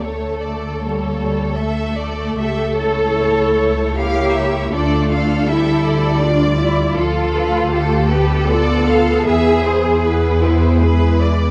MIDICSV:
0, 0, Header, 1, 6, 480
1, 0, Start_track
1, 0, Tempo, 786370
1, 24, Time_signature, 3, 2, 24, 8
1, 2425, Tempo, 749064
1, 4345, Tempo, 767263
1, 7185, End_track
2, 0, Start_track
2, 0, Title_t, "Violin section"
2, 0, Program_c, 0, 48
2, 17, Note_on_c, 0, 69, 61
2, 243, Note_on_c, 0, 74, 57
2, 257, Note_off_c, 0, 69, 0
2, 482, Note_on_c, 0, 73, 61
2, 487, Note_off_c, 0, 74, 0
2, 950, Note_on_c, 0, 76, 76
2, 963, Note_off_c, 0, 73, 0
2, 1204, Note_on_c, 0, 74, 71
2, 1210, Note_off_c, 0, 76, 0
2, 1465, Note_on_c, 0, 76, 77
2, 1466, Note_off_c, 0, 74, 0
2, 1698, Note_on_c, 0, 73, 75
2, 1707, Note_off_c, 0, 76, 0
2, 2402, Note_off_c, 0, 73, 0
2, 2418, Note_on_c, 0, 77, 99
2, 2663, Note_off_c, 0, 77, 0
2, 2667, Note_on_c, 0, 76, 81
2, 2909, Note_on_c, 0, 74, 83
2, 2912, Note_off_c, 0, 76, 0
2, 3146, Note_off_c, 0, 74, 0
2, 3154, Note_on_c, 0, 77, 84
2, 3386, Note_on_c, 0, 76, 89
2, 3387, Note_off_c, 0, 77, 0
2, 3624, Note_off_c, 0, 76, 0
2, 3624, Note_on_c, 0, 74, 91
2, 4343, Note_on_c, 0, 69, 78
2, 4344, Note_off_c, 0, 74, 0
2, 4574, Note_on_c, 0, 71, 85
2, 4578, Note_off_c, 0, 69, 0
2, 4815, Note_on_c, 0, 69, 88
2, 4817, Note_off_c, 0, 71, 0
2, 5053, Note_off_c, 0, 69, 0
2, 5055, Note_on_c, 0, 71, 81
2, 5295, Note_on_c, 0, 74, 95
2, 5298, Note_off_c, 0, 71, 0
2, 5534, Note_on_c, 0, 77, 91
2, 5537, Note_off_c, 0, 74, 0
2, 5775, Note_off_c, 0, 77, 0
2, 5780, Note_on_c, 0, 76, 97
2, 6013, Note_off_c, 0, 76, 0
2, 6022, Note_on_c, 0, 72, 83
2, 6261, Note_off_c, 0, 72, 0
2, 6267, Note_on_c, 0, 71, 73
2, 6500, Note_on_c, 0, 72, 78
2, 6506, Note_off_c, 0, 71, 0
2, 6744, Note_off_c, 0, 72, 0
2, 6748, Note_on_c, 0, 71, 90
2, 6987, Note_off_c, 0, 71, 0
2, 6992, Note_on_c, 0, 74, 82
2, 7185, Note_off_c, 0, 74, 0
2, 7185, End_track
3, 0, Start_track
3, 0, Title_t, "Violin section"
3, 0, Program_c, 1, 48
3, 22, Note_on_c, 1, 73, 62
3, 257, Note_on_c, 1, 69, 62
3, 259, Note_off_c, 1, 73, 0
3, 1448, Note_off_c, 1, 69, 0
3, 1469, Note_on_c, 1, 69, 66
3, 1941, Note_off_c, 1, 69, 0
3, 1946, Note_on_c, 1, 73, 69
3, 2178, Note_off_c, 1, 73, 0
3, 2185, Note_on_c, 1, 73, 66
3, 2897, Note_off_c, 1, 73, 0
3, 2909, Note_on_c, 1, 69, 80
3, 3148, Note_off_c, 1, 69, 0
3, 3156, Note_on_c, 1, 69, 78
3, 3849, Note_off_c, 1, 69, 0
3, 3859, Note_on_c, 1, 74, 79
3, 4343, Note_off_c, 1, 74, 0
3, 4347, Note_on_c, 1, 69, 81
3, 4814, Note_off_c, 1, 69, 0
3, 4821, Note_on_c, 1, 69, 80
3, 5758, Note_off_c, 1, 69, 0
3, 5781, Note_on_c, 1, 68, 86
3, 6257, Note_on_c, 1, 71, 78
3, 6260, Note_off_c, 1, 68, 0
3, 6734, Note_off_c, 1, 71, 0
3, 6745, Note_on_c, 1, 71, 71
3, 7185, Note_off_c, 1, 71, 0
3, 7185, End_track
4, 0, Start_track
4, 0, Title_t, "Cello section"
4, 0, Program_c, 2, 48
4, 17, Note_on_c, 2, 57, 73
4, 491, Note_on_c, 2, 58, 72
4, 492, Note_off_c, 2, 57, 0
4, 962, Note_on_c, 2, 57, 90
4, 968, Note_off_c, 2, 58, 0
4, 1459, Note_off_c, 2, 57, 0
4, 1472, Note_on_c, 2, 69, 113
4, 2423, Note_on_c, 2, 67, 109
4, 2424, Note_off_c, 2, 69, 0
4, 2909, Note_on_c, 2, 62, 109
4, 2913, Note_off_c, 2, 67, 0
4, 3379, Note_off_c, 2, 62, 0
4, 3386, Note_on_c, 2, 64, 106
4, 3858, Note_on_c, 2, 62, 104
4, 3860, Note_off_c, 2, 64, 0
4, 4098, Note_on_c, 2, 64, 108
4, 4100, Note_off_c, 2, 62, 0
4, 4338, Note_off_c, 2, 64, 0
4, 4343, Note_on_c, 2, 65, 107
4, 5055, Note_on_c, 2, 67, 108
4, 5060, Note_off_c, 2, 65, 0
4, 5291, Note_on_c, 2, 69, 117
4, 5293, Note_off_c, 2, 67, 0
4, 5768, Note_on_c, 2, 68, 117
4, 5773, Note_off_c, 2, 69, 0
4, 6497, Note_off_c, 2, 68, 0
4, 6500, Note_on_c, 2, 64, 96
4, 6744, Note_off_c, 2, 64, 0
4, 6744, Note_on_c, 2, 68, 94
4, 6985, Note_off_c, 2, 68, 0
4, 7185, End_track
5, 0, Start_track
5, 0, Title_t, "Viola section"
5, 0, Program_c, 3, 48
5, 0, Note_on_c, 3, 69, 61
5, 28, Note_on_c, 3, 57, 54
5, 498, Note_off_c, 3, 57, 0
5, 501, Note_on_c, 3, 55, 62
5, 722, Note_off_c, 3, 55, 0
5, 729, Note_on_c, 3, 55, 64
5, 964, Note_off_c, 3, 55, 0
5, 971, Note_on_c, 3, 57, 67
5, 1449, Note_off_c, 3, 69, 0
5, 1478, Note_on_c, 3, 67, 69
5, 1713, Note_off_c, 3, 67, 0
5, 1722, Note_on_c, 3, 64, 68
5, 1949, Note_off_c, 3, 57, 0
5, 1957, Note_on_c, 3, 57, 63
5, 2414, Note_off_c, 3, 64, 0
5, 2417, Note_off_c, 3, 57, 0
5, 2420, Note_on_c, 3, 64, 76
5, 2422, Note_on_c, 3, 58, 76
5, 2902, Note_off_c, 3, 64, 0
5, 2913, Note_off_c, 3, 58, 0
5, 2914, Note_on_c, 3, 57, 75
5, 2915, Note_on_c, 3, 65, 73
5, 3389, Note_on_c, 3, 55, 82
5, 3390, Note_on_c, 3, 67, 83
5, 3392, Note_off_c, 3, 57, 0
5, 3392, Note_off_c, 3, 65, 0
5, 3621, Note_off_c, 3, 67, 0
5, 3625, Note_on_c, 3, 69, 77
5, 3857, Note_off_c, 3, 69, 0
5, 3862, Note_on_c, 3, 65, 81
5, 4336, Note_off_c, 3, 65, 0
5, 4344, Note_off_c, 3, 55, 0
5, 4344, Note_on_c, 3, 65, 82
5, 4346, Note_on_c, 3, 53, 84
5, 4578, Note_off_c, 3, 65, 0
5, 4578, Note_on_c, 3, 69, 83
5, 4817, Note_on_c, 3, 57, 82
5, 4818, Note_on_c, 3, 67, 85
5, 4819, Note_off_c, 3, 69, 0
5, 4822, Note_off_c, 3, 53, 0
5, 5053, Note_off_c, 3, 57, 0
5, 5057, Note_on_c, 3, 59, 75
5, 5299, Note_off_c, 3, 67, 0
5, 5299, Note_on_c, 3, 65, 77
5, 5775, Note_on_c, 3, 64, 79
5, 5777, Note_off_c, 3, 65, 0
5, 6248, Note_off_c, 3, 64, 0
5, 6255, Note_off_c, 3, 59, 0
5, 6262, Note_on_c, 3, 59, 73
5, 6265, Note_on_c, 3, 64, 86
5, 6500, Note_off_c, 3, 64, 0
5, 6502, Note_on_c, 3, 68, 77
5, 6737, Note_off_c, 3, 59, 0
5, 6745, Note_off_c, 3, 68, 0
5, 6749, Note_on_c, 3, 56, 75
5, 6750, Note_on_c, 3, 64, 75
5, 7185, Note_off_c, 3, 56, 0
5, 7185, Note_off_c, 3, 64, 0
5, 7185, End_track
6, 0, Start_track
6, 0, Title_t, "Double bass section"
6, 0, Program_c, 4, 48
6, 20, Note_on_c, 4, 38, 61
6, 1447, Note_off_c, 4, 38, 0
6, 1473, Note_on_c, 4, 37, 71
6, 2913, Note_on_c, 4, 38, 83
6, 2914, Note_off_c, 4, 37, 0
6, 4319, Note_off_c, 4, 38, 0
6, 4348, Note_on_c, 4, 38, 91
6, 5754, Note_off_c, 4, 38, 0
6, 5784, Note_on_c, 4, 40, 96
6, 7185, Note_off_c, 4, 40, 0
6, 7185, End_track
0, 0, End_of_file